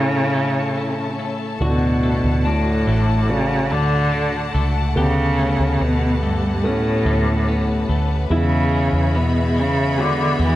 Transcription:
Already playing: A2 C#3 E3 A3 C#4 E4 A4 C#5 A5
0.34 A3
0.77 C#4
1.19 A3
1.59 D2 A2 B2 A3 D4 F#4 F#5
2.03 A3
2.24 D2
2.45 A2 D4
2.87 A1 A3
3.29 C#3 A3 F#4 D5
3.71 D2 D3 A3
4.13 D4
4.54 C#2 A3
4.96 D2 B2 C#3 A3 B3 G4 B4
5.39 A3
5.59 D2
5.81 D2 B2 B3
6.23 G2 A3
6.64 A2 A3 B3 C#4
7.06 D2 A3
7.48 B3
7.89 D2 A3
8.30 E2 B2 C#3 G#3 B3 E4 G#4 E5 B5
8.73 G#3
8.93 E2
9.15 B2 B3
9.56 C#3 G#3
9.97 D3 G#3 B3 F#4
10.40 E2 E3 G#3

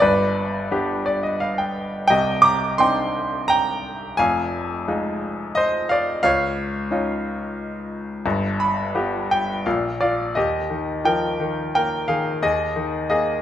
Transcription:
0.00 G1 G2 B4 D5
0.71 B3 D4 G4
1.06 D5
1.23 D#5
1.40 F5
1.58 G5
2.08 C2 C3 D#5 G5
2.42 A#5 D6
2.78 C4 D4 D#4 G5 C6
3.48 G5 A#5
4.17 F1 F2 F5 G#5
4.88 G#3 D#4 F4
5.55 C5 D#5
5.89 D5 F5
6.23 C#2 C#5 F5
6.91 C#4 D#4 F4
8.26 G1 G2
8.60 B5
8.95 B3 F4 G4
9.31 G5
9.66 A#1 A#2 F5
10.01 F4 D5 F5
10.35 D#2 G4 D#5
10.70 D#3
11.05 F3 A#4 G5
11.40 D#3
11.75 A#3 A#4 G5
12.08 D#3 G#4 F5
12.42 D#2 G#4 D#5
12.76 D#3
13.10 A#3 G#4 D#5

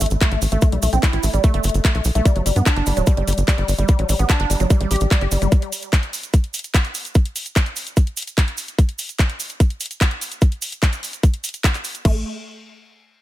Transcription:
Already playing: impact
0.00 A1 A3, open hi-hat, cabasa
0.06 closed hi-hat
0.10 A1, closed hi-hat, cabasa
0.21 A3, kick, clap, closed hi-hat, cabasa
0.32 A1 A3, closed hi-hat
0.42 A1, open hi-hat, cabasa
0.52 A1 A3, closed hi-hat, cabasa
0.61 A3, kick, closed hi-hat, cabasa
0.72 B1 G3, closed hi-hat
0.82 B1 A3, open hi-hat, cabasa
0.93 B1 C4, closed hi-hat, cabasa
1.03 E4, kick, clap, closed hi-hat, cabasa
1.13 A1 E4, closed hi-hat
1.23 A1 A3, open hi-hat, cabasa
1.34 A1 G3, closed hi-hat, cabasa
1.44 A3, kick, closed hi-hat, cabasa
1.54 G1 A3, closed hi-hat
1.64 G1 A3, open hi-hat, cabasa
1.69 closed hi-hat
1.74 G1, closed hi-hat, cabasa
1.85 A3, kick, clap, closed hi-hat, cabasa
1.95 B1 A3, closed hi-hat
2.04 B1, open hi-hat, cabasa
2.15 B1 A3, closed hi-hat, cabasa
2.25 G3, kick, closed hi-hat, cabasa
2.36 G1 F#3, closed hi-hat
2.46 G1 G3, open hi-hat, cabasa
2.56 G2 B3, closed hi-hat, cabasa
2.66 D4, kick, clap, closed hi-hat, cabasa
2.76 G1 D4, closed hi-hat
2.86 G1 G3, open hi-hat, cabasa
2.97 D1 F#3, closed hi-hat, cabasa
3.07 G3, kick, closed hi-hat, cabasa
3.17 G1 G3, closed hi-hat
3.27 G1 G3, open hi-hat, cabasa
3.33 closed hi-hat
3.38 G1, closed hi-hat, cabasa
3.48 G3, kick, clap, closed hi-hat, cabasa
3.58 G1 G3, closed hi-hat
3.68 G1, open hi-hat, cabasa
3.78 G1 G3, closed hi-hat, cabasa
3.88 G3, kick, closed hi-hat, cabasa
3.99 A1 F#3, closed hi-hat
4.09 A1 G3, open hi-hat, cabasa
4.19 A1 B3, closed hi-hat, cabasa
4.29 D4, kick, clap, closed hi-hat, cabasa
4.40 G1 D4, closed hi-hat
4.50 G1 G3, open hi-hat, cabasa
4.60 G1 F#3, closed hi-hat, cabasa
4.70 G3, kick, closed hi-hat, cabasa
4.80 A1 G3, closed hi-hat
4.91 A1 G4, open hi-hat, cabasa
4.96 closed hi-hat
5.00 A1, closed hi-hat, cabasa
5.11 G3, kick, clap, closed hi-hat, cabasa
5.21 G1 G4, closed hi-hat
5.31 G1 G3, open hi-hat, cabasa
5.42 G1 G3, closed hi-hat, cabasa
5.52 kick, closed hi-hat, cabasa
5.62 closed hi-hat
5.72 open hi-hat, cabasa
5.82 closed hi-hat, cabasa
5.93 kick, clap, closed hi-hat, cabasa
6.03 closed hi-hat
6.13 open hi-hat, cabasa
6.23 closed hi-hat, cabasa
6.34 kick, closed hi-hat, cabasa
6.44 closed hi-hat
6.54 open hi-hat, cabasa
6.59 closed hi-hat
6.64 closed hi-hat, cabasa
6.74 kick, clap, closed hi-hat, cabasa
6.85 closed hi-hat
6.95 open hi-hat, cabasa
7.05 closed hi-hat, cabasa
7.15 kick, closed hi-hat, cabasa
7.25 closed hi-hat
7.36 open hi-hat, cabasa
7.46 closed hi-hat, cabasa
7.56 kick, clap, closed hi-hat, cabasa
7.66 closed hi-hat
7.76 open hi-hat, cabasa
7.87 closed hi-hat, cabasa
7.97 kick, closed hi-hat, cabasa
8.07 closed hi-hat
8.17 open hi-hat, cabasa
8.22 closed hi-hat
8.27 closed hi-hat, cabasa
8.38 kick, clap, closed hi-hat, cabasa
8.48 closed hi-hat
8.57 open hi-hat, cabasa
8.68 closed hi-hat, cabasa
8.79 kick, closed hi-hat, cabasa
8.89 closed hi-hat
8.99 open hi-hat, cabasa
9.09 closed hi-hat, cabasa
9.19 kick, clap, closed hi-hat, cabasa
9.30 closed hi-hat
9.40 open hi-hat, cabasa
9.49 closed hi-hat, cabasa
9.60 kick, closed hi-hat, cabasa
9.70 closed hi-hat
9.80 open hi-hat, cabasa
9.86 closed hi-hat
9.91 closed hi-hat, cabasa
10.01 kick, clap, closed hi-hat, cabasa
10.11 closed hi-hat
10.21 open hi-hat, cabasa
10.32 closed hi-hat, cabasa
10.41 kick, closed hi-hat, cabasa
10.52 closed hi-hat
10.62 open hi-hat, cabasa
10.72 closed hi-hat, cabasa
10.83 kick, clap, closed hi-hat, cabasa
10.93 closed hi-hat, cabasa
11.03 open hi-hat, cabasa
11.13 closed hi-hat, cabasa
11.23 kick, closed hi-hat, cabasa
11.34 closed hi-hat
11.44 open hi-hat, cabasa
11.49 closed hi-hat
11.54 closed hi-hat, cabasa
11.64 kick, clap, closed hi-hat, cabasa
11.74 clap, closed hi-hat, cabasa
11.84 open hi-hat, cabasa
11.95 closed hi-hat, cabasa
12.05 A1 A3, kick, crash

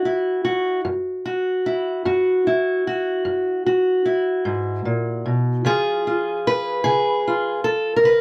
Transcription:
Already playing: F#2 F#4
0.05 E4
0.45 F#4
0.85 F#2
1.26 F#4
1.66 E4
2.05 F#2 F#4
2.47 E4
2.87 F#4
3.25 F#2
3.66 F#4
4.05 E4
4.45 G#2
4.85 A#2
5.26 B2
5.65 C#3 F3 F4 G#4
6.07 F4
6.47 B4
6.84 C#3 G#4
7.27 F4
7.64 A4
7.96 A#4
8.03 C#3 B4

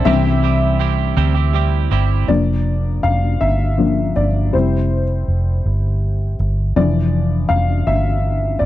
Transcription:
0.05 C2 C3 E3 G3 C4 E4 G4 E5
0.25 C4 E4 G4
0.43 G3 C4 E4 G4
0.79 G3 C4 E4 G4
1.17 D2 C3 G3 C4 E4 G4
1.35 C4 E4 G4
1.54 G3 C4 E4 G4
1.91 G1 G3 C4 E4 G4
2.28 F1 F3 A#3 D4 D5
3.03 F1 F5
3.41 G1 E5
3.78 F3 A#3 D4
4.16 G1 D5
4.53 F1 G3 C4 E4 C5
5.28 F1
5.66 G1
6.40 G1
6.76 F1 E3 F3 D4 D5
7.49 F1 F5
7.87 G1 E5
8.59 G1 D5

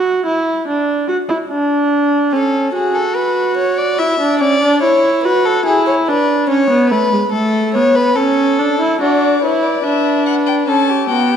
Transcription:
Already playing: F#4
0.26 E4
0.68 D4
1.08 F#4
1.29 E4
1.50 D4
2.32 C#4 A4
2.74 F#4 G#4
2.95 A4
3.15 B4
3.57 C#5
3.78 D5
3.98 E4 E5
4.20 D4
4.39 C#4 D5
4.62 D4
4.82 E4 C#5
5.24 F#4 B4
5.46 A4
5.66 E4 G#4
5.86 C#5
6.08 D4 B4
6.50 C#4 C#5
6.70 B3
6.90 A3 B4
7.12 G#3
7.32 A3 A4
7.74 B3 C#5
7.96 B4
8.16 C#4 A4
8.59 D4
8.80 E4
9.00 D4 F#4 D5
9.43 E4 B4 C#5
9.63 D5
9.84 D4 E5
10.26 F#5
10.46 G5
10.67 C#4 A4 A5
10.89 G4
11.09 B3 F#4 G5
11.31 G4

